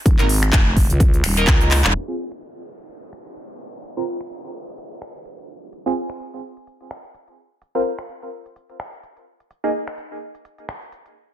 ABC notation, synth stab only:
X:1
M:4/4
L:1/16
Q:"Swing 16ths" 1/4=127
K:Fm
V:1 name="Synth stab"
z [B,EB] z8 z [B,EB]4- [B,EB] | z [CFA] z12 z2 | z [CFB] z12 z2 | z [CFA] z12 z2 |
z [CFB] z12 z2 | z [B,EA] z12 z2 |]